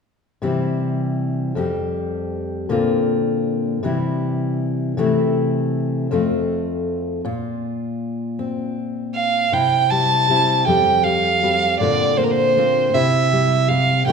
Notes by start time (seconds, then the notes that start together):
0.42 C3 E3 G3 C4 E4
1.55 F2 F3 G3 C4 G4
2.69 A#2 D3 A#3 C4 F4
3.83 C3 E3 G3 C4 E4
4.97 C3 E3 A3 C4 E4
6.11 F2 F3 A3 C4 F4
7.25 A#2 F4
8.39 C4
9.15 F5
9.52 C3 E4 G5
9.91 G3 A5
10.29 G3 C4 E4
10.66 F2 F3 G3 C4 G4 G5
11.04 G3 F5
11.43 G3 C4 G4
11.79 A#2 D3 A#3 C4 D5
11.83 F4
12.17 A#3 C5
12.24 A#4
12.31 C5
12.57 A#3 C4 F4
12.94 C3 E4 E5
13.33 G3
13.68 G3 C4 F5
14.07 C3 E3 A3 C4 G5